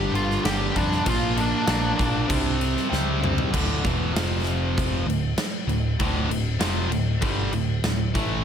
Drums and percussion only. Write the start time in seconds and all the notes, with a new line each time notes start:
0.15 crash
0.31 snare
0.45 snare, crash
0.76 kick, crash
0.92 snare
1.06 kick, crash
1.37 crash
1.67 snare, crash
1.99 kick, crash
2.30 kick, crash
2.61 crash
2.77 snare
2.93 snare
3.24 mid tom
3.38 floor tom
3.54 kick, crash
3.85 kick, crash
4.16 snare, crash
4.47 crash
4.78 kick, crash
5.10 crash
5.38 snare, crash
5.69 crash
6.00 kick, crash
6.31 crash
6.61 snare, crash
6.92 crash
7.22 kick, crash
7.53 crash
7.84 snare, crash
8.15 kick, crash